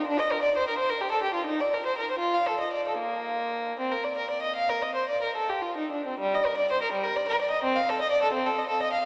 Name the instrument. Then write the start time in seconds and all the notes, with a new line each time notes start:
violin
0.07 D4
0.20 D#5
0.31 A#4
0.42 D5
0.57 C5
0.68 A#4
0.78 C5
0.90 A#4
1.01 G4
1.11 A4
1.23 G4
1.34 F4
1.46 D#4
1.60 D5
1.74 A#4
1.86 C5
1.98 A#4
2.11 C5
2.19 F4
2.34 F5
2.47 A4
2.60 D#5
2.73 D5
2.88 A4
2.98 A#3
3.79 C4
3.92 A#4
4.04 D5
4.18 A#4
4.31 D5
4.43 D#5
4.56 F5
4.69 A#4
4.83 D#5
4.95 C5
5.09 D5
5.23 A#4
5.36 A4
5.49 G4
5.62 F4
5.78 D#4
5.92 D4
6.06 C4
6.20 G3
6.35 D#5
6.46 A#4
6.57 D5
6.72 C5
6.82 A#4
6.92 G3
7.04 A#4
7.16 D5
7.28 A#4
7.41 D5
7.50 D#5
7.64 C4
7.76 F5
7.89 A4
8.01 D#5
8.11 D5
8.23 A4
8.33 C4
8.46 A4
8.59 D#5
8.69 A4
8.82 D#5
8.93 F5